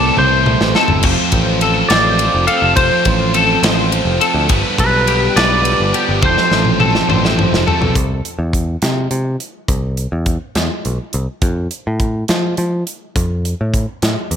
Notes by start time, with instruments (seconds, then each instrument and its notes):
Already playing: picked electric bass C2, overdriven electric guitar A2 E3 A3 C4 E4, clean electric guitar A2 A3 C4 E4 A4 D5
0.17 picked electric bass C2, overdriven electric guitar A2 E3 A3 C4 E4, clean electric guitar E4 C5, high tom
0.46 clean electric guitar A3, mid tom
0.61 picked electric bass A1, snare
0.74 overdriven electric guitar A3 C4 E4, clean electric guitar C4 A4, snare
0.88 picked electric bass G1, floor tom
1.02 picked electric bass F1, clean electric guitar F2 C5, overdriven electric guitar F3 A3 C4 F4, kick, crash
1.32 picked electric bass A1, clean electric guitar F3, kick, ride
1.61 overdriven electric guitar F3 A3 C4 F4, clean electric guitar C4 A4, ride
1.89 picked electric bass A1, overdriven electric guitar F3 A3 C4 F4, clean electric guitar C5 D5, snare, ride
2.19 clean electric guitar F3, ride
2.34 picked electric bass F1
2.47 overdriven electric guitar A3 C4 F4, clean electric guitar C4 A4 F5, ride
2.62 picked electric bass F1
2.75 picked electric bass F1, clean electric guitar F2 C5, overdriven electric guitar F3 A3 C4 F4, kick, ride
3.05 picked electric bass A1, clean electric guitar F3, kick, ride
3.33 overdriven electric guitar F3 A3 C4 F4, clean electric guitar C4 A4, ride
3.63 picked electric bass A1, overdriven electric guitar F3 A3 C4 F4, clean electric guitar C5, snare, ride
3.91 clean electric guitar F3, ride
4.05 picked electric bass F1
4.20 overdriven electric guitar A3 C4 F4, clean electric guitar C4 A4, ride
4.34 picked electric bass D2
4.48 picked electric bass G1, overdriven electric guitar G2 D3 F3 B3 D4, clean electric guitar G2 B4, kick, ride
4.78 picked electric bass B1, clean electric guitar G3 B4, kick, ride
5.07 overdriven electric guitar D3 F3 B3 D4, clean electric guitar B3 G4, ride
5.35 picked electric bass B1, overdriven electric guitar G2 D3 F3 B3 D4, clean electric guitar F4 B4 D5, snare, ride
5.64 clean electric guitar G3, ride
5.80 picked electric bass G1
5.92 overdriven electric guitar F3 B3 D4, clean electric guitar B3 G4, ride
6.09 picked electric bass G1
6.21 picked electric bass F1, overdriven electric guitar F2 C3 F3 A3 C4, clean electric guitar F2 F3 C4 E4 A4 C5, kick, high tom
6.25 clean electric guitar C5
6.38 snare
6.50 picked electric bass A1, clean electric guitar F3, snare
6.65 mid tom
6.79 overdriven electric guitar C3 F3 A3 C4, clean electric guitar C4 A4, mid tom
6.95 snare
7.08 picked electric bass A1, overdriven electric guitar F2 C3 F3 A3 C4, clean electric guitar D4 C5, mid tom
7.23 clean electric guitar E4, snare
7.38 clean electric guitar F3, mid tom
7.52 picked electric bass F1, snare
7.66 overdriven electric guitar F3 A3 C4, clean electric guitar C4 A4, floor tom
7.81 picked electric bass B1, floor tom
7.95 picked electric bass C2, kick, closed hi-hat
8.25 closed hi-hat
8.39 picked electric bass E2
8.53 kick, closed hi-hat
8.82 picked electric bass C3, snare, closed hi-hat
9.11 picked electric bass C3, closed hi-hat
9.40 closed hi-hat
9.68 picked electric bass C2, kick, closed hi-hat
9.97 closed hi-hat
10.12 picked electric bass E2
10.26 kick, closed hi-hat
10.55 picked electric bass E2, snare, closed hi-hat
10.85 picked electric bass B1, closed hi-hat
11.13 picked electric bass C2, closed hi-hat
11.42 picked electric bass F2, kick, closed hi-hat
11.71 closed hi-hat
11.87 picked electric bass A2
12.00 kick, closed hi-hat
12.28 picked electric bass F3, snare, closed hi-hat
12.57 picked electric bass F3, closed hi-hat
12.87 closed hi-hat
13.16 picked electric bass F2, kick, closed hi-hat
13.45 closed hi-hat
13.61 picked electric bass A2
13.74 kick, closed hi-hat
14.02 picked electric bass A2, snare, closed hi-hat
14.31 picked electric bass E2, closed hi-hat